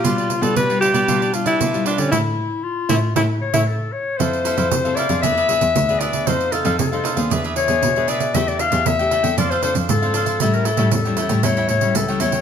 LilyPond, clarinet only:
\new Staff \with { instrumentName = "Clarinet" } { \time 4/4 \key a \phrygian \tempo 4 = 116 f'4 g'4 d'4. r8 | e'4 f'4 e'8 cis''8 a'8 cis''8 | c''4. d''8 e''4. d''8 | c''8 a'8 a'4 r8 cis''4 d''8 |
e''16 d''16 f''8 e''4 d''16 c''16 c''8 a'4 | a'16 bes'16 a'8 a'4 cis''8 cis''8 a'8 cis''8 | }